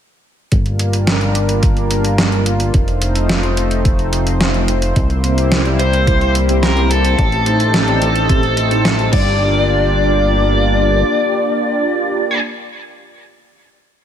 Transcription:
0.52 G1 G3 A#3 D4 F4 A#4, kick, closed hi-hat
0.66 closed hi-hat
0.79 closed hi-hat
0.93 closed hi-hat
1.07 snare, closed hi-hat
1.21 closed hi-hat
1.35 closed hi-hat
1.49 closed hi-hat
1.63 kick, closed hi-hat
1.77 closed hi-hat
1.91 closed hi-hat
2.05 closed hi-hat
2.18 snare, closed hi-hat
2.32 closed hi-hat
2.46 closed hi-hat
2.60 closed hi-hat
2.74 F1 A3 C4 D#4 C5, kick, closed hi-hat
2.88 closed hi-hat
3.02 closed hi-hat
3.15 closed hi-hat
3.29 snare, closed hi-hat
3.43 closed hi-hat
3.57 closed hi-hat
3.71 closed hi-hat
3.85 kick, closed hi-hat
3.99 closed hi-hat
4.13 closed hi-hat
4.27 closed hi-hat
4.41 snare, closed hi-hat
4.54 closed hi-hat
4.68 closed hi-hat
4.82 closed hi-hat
4.96 C2 A#3 E4 G4, kick, closed hi-hat
5.10 closed hi-hat
5.24 C3 A#3 C4 E4 G4 C5, closed hi-hat
5.38 closed hi-hat
5.52 snare, closed hi-hat
5.66 C3 A#3 C4 E4 G4 D5, closed hi-hat
5.79 C5, closed hi-hat
5.93 closed hi-hat
6.07 C3 A#3 C4 E4 G4 C5, kick, closed hi-hat
6.21 closed hi-hat
6.35 closed hi-hat
6.49 C3 A#3 C4 E4 G4 C5, closed hi-hat
6.63 A#4, snare, closed hi-hat
6.77 closed hi-hat
6.91 A#3 C4 E4 G4 A4 C5, closed hi-hat
7.05 closed hi-hat
7.19 A1 A3 D#4, kick, closed hi-hat
7.32 closed hi-hat
7.46 A2 A3 C4 D#4 G4 C5, closed hi-hat
7.60 closed hi-hat
7.74 snare, closed hi-hat
7.88 A2 A3 C4 D#4 G4 D5, closed hi-hat
8.02 closed hi-hat
8.16 closed hi-hat
8.29 A2 A3 C4 D#4 G4 C5, kick, closed hi-hat
8.43 closed hi-hat
8.57 closed hi-hat
8.71 A2 A3 C4 D#4 G4 C5, closed hi-hat
8.85 snare, closed hi-hat
8.99 closed hi-hat
9.13 G1 A#3 D4 F4 G4 D5, kick, crash

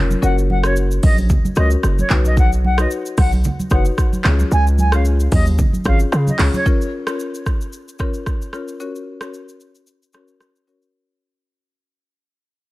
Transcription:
Already playing: F1 C#4 F4 A#4 C#5
0.11 high conga, shaker
0.22 F#1 C#4 F#4 A#4 C#5 F#5, shaker
0.38 shaker
0.50 F#5, high conga
0.64 C#4 F#4 A#4 C#5, cross-stick, shaker
0.76 shaker
0.91 shaker
1.03 A#1 D#5, kick, open hi-hat, high conga, shaker
1.18 high conga, shaker
1.30 kick, low conga, shaker
1.45 high conga, shaker
1.56 C#2 C#4 F#4 A#4 C#5 D#5, cross-stick, high conga, shaker
1.70 shaker
1.83 F#1, cross-stick, shaker
1.99 C#5, high conga, shaker
2.10 B1 D#4 F#4 B4 C#5, clap, low conga, shaker
2.25 D#5, high conga, shaker
2.37 F#5, kick, shaker
2.52 shaker
2.65 F#5, high conga
2.78 D#4 F#4 B4 C#5 D#5, cross-stick, shaker
2.91 shaker
3.06 shaker
3.18 B1 F#5, kick, cross-stick, open hi-hat, high conga, shaker
3.32 high conga, shaker
3.44 low conga, shaker
3.59 high conga, shaker
3.70 F#1 D#4 F#4 B4 C#5 F#5, kick, cross-stick, high conga, shaker
3.85 shaker
3.98 kick, cross-stick, shaker
4.13 high conga, shaker
4.24 C#2 C#4 F4 G#4 C#5, cross-stick, clap, low conga, shaker
4.39 high conga, shaker
4.52 C#2 G#5, shaker
4.67 shaker
4.78 G#5, high conga, shaker
4.92 C#4 F4 G#4 C#5 F5, cross-stick, shaker
5.05 shaker
5.20 shaker
5.32 D#2 D#5, kick, open hi-hat, high conga, shaker
5.46 high conga, shaker
5.58 kick, low conga, shaker
5.73 high conga, shaker
5.85 G#1 C#4 F4 G#4 C#5 F5, kick, cross-stick, shaker
5.99 shaker
6.12 C#3, cross-stick, shaker
6.27 D#5, high conga, shaker
6.39 C#2 C#4 F4 G#4 C#5, clap, open hi-hat, low conga, shaker
6.54 C#5, high conga, shaker
6.65 C#4 F4 A#4 C#5, kick, shaker
6.81 shaker
7.07 C#4 F4 A#4 C#5, cross-stick, shaker
7.20 shaker
7.34 shaker
7.46 kick, cross-stick, shaker
7.61 shaker
7.73 shaker
7.88 shaker
7.99 C#4 F4 A#4 C#5, kick, cross-stick, shaker
8.14 shaker
8.26 kick, cross-stick, shaker
8.42 shaker
8.53 C#4 F4 A#4 C#5, cross-stick, shaker
8.68 shaker
8.80 C#4 F#4 A#4 C#5, shaker
8.96 shaker
9.21 C#4 F#4 A#4 C#5, cross-stick, shaker
9.34 shaker
9.49 shaker
9.60 shaker
9.75 shaker
9.87 shaker
10.03 shaker
10.13 C#4 F#4 A#4 C#5, cross-stick, shaker
10.28 shaker
10.41 cross-stick, shaker
10.56 shaker
10.67 C#4 F#4 A#4 C#5, shaker
10.82 shaker

